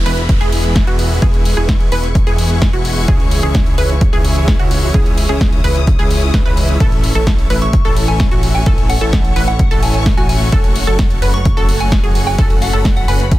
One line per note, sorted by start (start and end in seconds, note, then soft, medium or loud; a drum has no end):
0.00 6.76 G#4 medium
0.00 3.05 B4 medium
0.00 10.49 E5 medium
0.00 1.20 B5 medium
0.00 downlifter medium
0.06 0.38 E1 loud
0.06 0.21 E3 medium
0.06 0.21 G#3 medium
0.06 0.21 B3 medium
0.06 0.21 E4 medium
0.06 0.21 B4 loud
0.06 open hi-hat loud
0.18 closed hi-hat soft
0.29 kick loud
0.29 closed hi-hat medium
0.41 0.85 E1 medium
0.41 0.85 E3 loud
0.41 0.85 G#3 medium
0.41 0.85 B3 medium
0.41 0.85 E4 medium
0.41 0.84 G#4 loud
0.41 0.85 G#4 loud
0.41 closed hi-hat soft
0.52 open hi-hat loud
0.64 closed hi-hat soft
0.76 kick loud
0.76 snare loud
0.76 closed hi-hat loud
0.87 1.20 E1 loud
0.87 1.19 E3 medium
0.87 1.19 G#3 medium
0.87 1.19 B3 medium
0.87 1.19 E4 medium
0.87 1.19 F#4 medium
0.87 closed hi-hat soft
0.99 open hi-hat loud
1.22 1.55 E1 loud
1.22 1.54 E3 loud
1.22 1.54 G#3 medium
1.22 1.54 B3 medium
1.22 1.54 E4 medium
1.22 1.54 G#4 loud
1.22 4.91 C#6 medium
1.22 kick loud
1.22 closed hi-hat medium
1.34 closed hi-hat soft
1.45 open hi-hat loud
1.57 1.90 E1 loud
1.57 1.89 E3 medium
1.57 1.89 G#3 medium
1.57 1.89 B3 medium
1.57 1.89 E4 medium
1.57 1.89 G#4 medium
1.57 1.89 G#4 loud
1.69 kick loud
1.69 snare loud
1.69 closed hi-hat medium
1.80 closed hi-hat soft
1.92 2.24 E1 loud
1.92 2.07 E3 medium
1.92 2.07 G#3 medium
1.92 2.07 B3 medium
1.92 2.07 E4 medium
1.92 2.07 B4 loud
1.92 2.08 B4 loud
1.92 open hi-hat loud
2.04 closed hi-hat soft
2.15 kick loud
2.15 closed hi-hat medium
2.27 2.71 E1 medium
2.27 2.71 E3 loud
2.27 2.71 G#3 medium
2.27 2.71 B3 medium
2.27 2.71 E4 medium
2.27 2.71 G#4 loud
2.27 closed hi-hat soft
2.38 open hi-hat loud
2.62 kick loud
2.62 snare loud
2.62 closed hi-hat medium
2.73 3.06 E1 loud
2.73 3.05 E3 medium
2.73 3.05 G#3 medium
2.73 3.05 B3 medium
2.73 3.05 E4 medium
2.73 3.05 F#4 medium
2.73 closed hi-hat soft
2.85 open hi-hat loud
3.08 3.41 C#2 loud
3.08 3.40 E3 loud
3.08 3.40 G#3 medium
3.08 3.40 C#4 medium
3.08 3.40 E4 medium
3.08 3.40 G#4 loud
3.08 6.77 C#5 medium
3.08 kick loud
3.08 closed hi-hat medium
3.20 closed hi-hat soft
3.31 open hi-hat loud
3.43 3.76 C#2 loud
3.43 3.75 E3 medium
3.43 3.75 G#3 medium
3.43 3.75 C#4 medium
3.43 3.75 E4 medium
3.43 3.75 G#4 loud
3.43 3.75 G#4 medium
3.55 kick loud
3.55 snare loud
3.55 closed hi-hat medium
3.66 closed hi-hat soft
3.78 4.11 C#2 medium
3.78 3.94 E3 medium
3.78 3.94 G#3 medium
3.78 3.94 C#4 medium
3.78 3.94 E4 medium
3.78 3.94 B4 loud
3.78 open hi-hat loud
3.90 closed hi-hat soft
4.01 kick loud
4.01 closed hi-hat medium
4.13 4.57 C#2 medium
4.13 4.57 E3 loud
4.13 4.57 G#3 medium
4.13 4.57 C#4 medium
4.13 4.57 E4 medium
4.13 4.57 G#4 loud
4.13 closed hi-hat soft
4.25 open hi-hat loud
4.36 closed hi-hat soft
4.48 kick loud
4.48 snare loud
4.48 closed hi-hat medium
4.59 4.92 C#2 medium
4.59 4.91 E3 medium
4.59 4.92 G#3 medium
4.59 4.92 C#4 medium
4.59 4.91 E4 medium
4.59 4.91 F#4 medium
4.59 closed hi-hat soft
4.71 open hi-hat loud
4.94 5.27 C#2 loud
4.94 5.26 E3 loud
4.94 5.26 G#3 medium
4.94 5.26 C#4 medium
4.94 5.26 E4 medium
4.94 5.26 G#4 loud
4.94 6.78 D#6 loud
4.94 kick loud
4.94 closed hi-hat medium
5.06 closed hi-hat soft
5.18 open hi-hat loud
5.29 5.62 C#2 loud
5.29 5.61 E3 medium
5.29 5.61 G#3 medium
5.29 5.61 C#4 medium
5.29 5.61 E4 medium
5.29 5.61 G#4 medium
5.29 closed hi-hat soft
5.41 kick loud
5.41 snare loud
5.41 closed hi-hat medium
5.53 closed hi-hat soft
5.64 5.97 C#2 loud
5.64 5.80 E3 medium
5.64 5.80 G#3 medium
5.64 5.80 C#4 medium
5.64 5.80 E4 medium
5.64 5.80 B4 loud
5.64 open hi-hat loud
5.76 closed hi-hat soft
5.87 kick loud
5.87 closed hi-hat medium
5.99 6.31 C#2 medium
5.99 6.32 E3 loud
5.99 6.31 G#3 medium
5.99 6.31 C#4 medium
5.99 6.32 E4 medium
5.99 6.31 G#4 loud
5.99 6.32 G#4 loud
5.99 closed hi-hat soft
6.11 open hi-hat loud
6.22 closed hi-hat soft
6.34 6.43 C#2 loud
6.34 6.43 E3 medium
6.34 6.43 G#3 medium
6.34 6.43 C#4 medium
6.34 6.43 E4 medium
6.34 6.43 B4 medium
6.34 kick loud
6.34 snare loud
6.34 closed hi-hat medium
6.46 6.78 C#2 loud
6.46 6.78 E3 loud
6.46 6.78 G#3 medium
6.46 6.78 C#4 medium
6.46 6.78 E4 medium
6.46 6.78 B4 loud
6.46 closed hi-hat soft
6.57 open hi-hat loud
6.69 closed hi-hat soft
6.80 7.13 A1 medium
6.80 7.12 E3 loud
6.80 7.12 A3 medium
6.80 13.39 A3 medium
6.80 7.12 C#4 medium
6.80 7.12 E4 medium
6.80 7.12 A4 loud
6.80 13.39 C#5 medium
6.80 12.35 C#6 medium
6.80 kick loud
6.80 closed hi-hat medium
6.92 closed hi-hat soft
7.04 open hi-hat loud
7.15 7.48 A1 loud
7.15 7.47 E3 medium
7.15 7.47 A3 medium
7.15 7.47 C#4 medium
7.15 7.47 E4 medium
7.15 7.47 A4 loud
7.15 closed hi-hat soft
7.27 kick loud
7.27 snare loud
7.27 closed hi-hat medium
7.39 closed hi-hat soft
7.50 7.83 A1 loud
7.50 7.66 E3 medium
7.50 7.66 A3 medium
7.50 7.66 C#4 medium
7.50 7.66 E4 medium
7.50 7.66 B4 loud
7.50 open hi-hat loud
7.62 7.76 C#6 medium
7.62 closed hi-hat soft
7.73 kick loud
7.73 closed hi-hat medium
7.85 8.29 A1 loud
7.85 8.29 E3 loud
7.85 8.29 A3 medium
7.85 8.29 C#4 medium
7.85 8.29 E4 medium
7.85 8.29 A4 loud
7.85 closed hi-hat soft
7.96 open hi-hat loud
8.08 8.22 G#5 medium
8.08 closed hi-hat soft
8.20 kick loud
8.20 snare loud
8.20 closed hi-hat medium
8.31 8.64 A1 loud
8.31 8.64 E3 medium
8.31 8.64 A3 medium
8.31 8.64 C#4 medium
8.31 8.64 E4 medium
8.31 8.64 F#4 medium
8.31 closed hi-hat soft
8.43 open hi-hat loud
8.55 8.87 G#5 medium
8.66 8.99 A1 loud
8.66 8.98 E3 loud
8.66 8.98 A3 medium
8.66 8.98 C#4 medium
8.66 8.98 E4 medium
8.66 8.98 A4 loud
8.66 kick loud
8.66 closed hi-hat medium
8.78 closed hi-hat soft
8.89 9.24 F#5 medium
8.89 open hi-hat loud
9.01 9.34 A1 loud
9.01 9.33 E3 medium
9.01 9.33 A3 medium
9.01 9.33 C#4 medium
9.01 9.33 E4 medium
9.01 9.33 A4 loud
9.01 9.33 A4 medium
9.01 closed hi-hat soft
9.13 kick loud
9.13 snare loud
9.13 closed hi-hat medium
9.24 closed hi-hat soft
9.36 9.69 A1 loud
9.36 9.52 E3 medium
9.36 9.52 A3 medium
9.36 9.52 C#4 medium
9.36 9.52 E4 medium
9.36 9.52 B4 loud
9.36 open hi-hat loud
9.48 9.62 F#5 medium
9.48 closed hi-hat soft
9.59 kick loud
9.59 closed hi-hat medium
9.71 10.15 A1 medium
9.71 10.15 E3 loud
9.71 10.15 A3 medium
9.71 10.15 C#4 medium
9.71 10.15 E4 medium
9.71 10.15 A4 loud
9.71 closed hi-hat soft
9.83 9.90 G#5 medium
9.83 open hi-hat loud
9.94 10.02 G#5 medium
9.94 closed hi-hat soft
10.06 kick loud
10.06 snare loud
10.06 closed hi-hat medium
10.17 10.50 A1 loud
10.17 10.50 E3 medium
10.17 10.50 A3 medium
10.17 10.50 C#4 medium
10.17 10.50 E4 medium
10.17 10.50 F#4 medium
10.17 10.25 G#5 medium
10.17 closed hi-hat soft
10.29 10.37 G#5 medium
10.29 open hi-hat loud
10.52 10.85 F#1 loud
10.52 10.84 F#3 loud
10.52 10.84 A3 medium
10.52 10.84 C#4 medium
10.52 10.84 F#4 medium
10.52 10.84 A4 loud
10.52 10.85 A4 loud
10.52 13.39 F#5 medium
10.52 kick loud
10.52 closed hi-hat medium
10.64 closed hi-hat soft
10.76 open hi-hat loud
10.87 11.20 F#1 loud
10.87 11.19 F#3 medium
10.87 11.19 A3 medium
10.87 11.19 C#4 medium
10.87 11.19 F#4 medium
10.87 11.19 A4 loud
10.87 11.19 A4 medium
10.87 closed hi-hat soft
10.99 kick loud
10.99 snare loud
10.99 closed hi-hat loud
11.10 closed hi-hat soft
11.22 11.55 F#1 loud
11.22 11.38 F#3 medium
11.22 11.38 A3 medium
11.22 11.38 C#4 medium
11.22 11.38 F#4 medium
11.22 11.38 B4 loud
11.22 open hi-hat loud
11.34 11.48 C#6 medium
11.34 closed hi-hat soft
11.45 kick loud
11.45 closed hi-hat loud
11.57 12.01 F#1 loud
11.57 12.01 F#3 loud
11.57 12.01 A3 medium
11.57 12.01 C#4 medium
11.57 12.01 F#4 medium
11.57 12.01 A4 loud
11.57 closed hi-hat soft
11.69 open hi-hat loud
11.80 11.94 G#5 medium
11.80 closed hi-hat soft
11.92 kick loud
11.92 snare loud
11.92 closed hi-hat loud
12.04 12.36 F#1 loud
12.04 12.36 F#3 medium
12.04 12.36 A3 medium
12.04 12.36 C#4 medium
12.04 12.36 F#4 medium
12.04 12.36 G#4 medium
12.04 closed hi-hat soft
12.15 open hi-hat loud
12.27 12.59 G#5 medium
12.38 12.71 F#1 medium
12.38 12.71 F#3 loud
12.38 12.71 A3 medium
12.38 12.71 C#4 medium
12.38 12.71 F#4 medium
12.38 12.71 A4 loud
12.38 13.39 B5 medium
12.38 kick loud
12.38 closed hi-hat loud
12.50 closed hi-hat soft
12.62 12.76 F#5 medium
12.62 open hi-hat loud
12.73 13.06 F#1 loud
12.73 13.05 F#3 medium
12.73 13.05 A3 medium
12.73 13.05 C#4 medium
12.73 13.05 F#4 medium
12.73 13.05 A4 medium
12.73 13.05 A4 loud
12.73 closed hi-hat soft
12.85 kick loud
12.85 snare loud
12.85 closed hi-hat loud
12.96 13.06 F#5 medium
12.96 closed hi-hat soft
13.08 13.39 F#1 loud
13.08 13.24 F#3 medium
13.08 13.24 A3 medium
13.08 13.24 C#4 medium
13.08 13.24 F#4 medium
13.08 13.24 B4 loud
13.08 13.22 G#5 medium
13.08 open hi-hat loud
13.20 closed hi-hat soft
13.31 kick loud
13.31 closed hi-hat loud